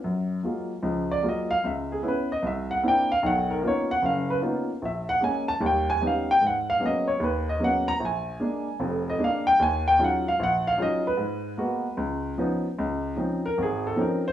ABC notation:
X:1
M:4/4
L:1/8
Q:"Swing" 1/4=151
K:F#
V:1 name="Upright piano"
z4 z =d ^d e | =e G B d e f =g ^e | f A c f e B z2 | =e f g =a =g ^g ^e =g |
f e d c B d f a | g4 z d e =g | g =g f e f e d B- | B4 z4 |
[K:Db] z3 B A =A B c |]
V:2 name="Upright piano"
F,,2 [F,G,A,E] z [C,,E,]2 [F,G,A,E] z | C,,2 [B,C=E] z =C,,2 [_B,=C=DE] z | [B,,,D,]2 [A,B,CDE] z F,,,2 [A,B,CDE] z | A,,,2 [G,A,C] z [D,,=G,]2 [G,B,CD] z |
G,,2 [F,G,A,B,C] z D,,2 [F,G,A,B,C] z | A,,,2 [G,A,=D] z [E,,,E,,]2 [G,A,D] z | D,,2 [F,G,CDE] z A,,,2 [F,G,CDE] z | G,,2 [G,A,B,F] z C,,2 [E,B,CD] z |
[K:Db] D,,2 [F,CDE] z A,,,2 [F,CDE] z |]